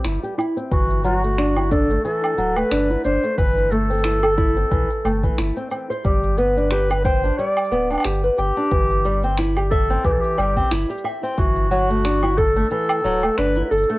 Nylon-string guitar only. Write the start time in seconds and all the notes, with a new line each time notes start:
0.05 E4
0.23 G4
0.38 E4
0.57 C4
0.71 E3
1.04 F#3
1.23 A3
1.38 D4
1.57 E4
1.71 D4
1.90 A3
2.05 E3
2.38 F#3
2.57 A3
2.71 D4
2.90 E4
3.05 D4
3.23 A3
3.38 E3
3.71 A3
3.90 C4
4.05 E4
4.23 A4
4.37 E4
4.56 C4
4.71 E3
5.04 A3
5.23 E3
5.38 E4
5.57 C4
5.71 C4
5.90 C5
6.05 G3
6.38 B3
6.57 D4
6.72 G4
6.90 B4
7.05 G5
7.24 D4
7.39 G3
7.72 B3
7.90 D4
8.05 G4
8.24 B4
8.38 G5
8.57 D4
8.71 E3
9.05 G3
9.24 C4
9.38 E4
9.57 G4
9.71 E5
9.90 C4
10.05 E3
10.38 G3
10.56 C4
10.71 E4
10.90 G4
11.04 E5
11.23 C4
11.38 E3
11.71 F#3
11.90 A3
12.05 D4
12.23 E4
12.38 A4
12.56 A3
12.71 E3
13.04 F#3
13.23 A3
13.38 D4
13.56 E4
13.71 A4
13.90 A3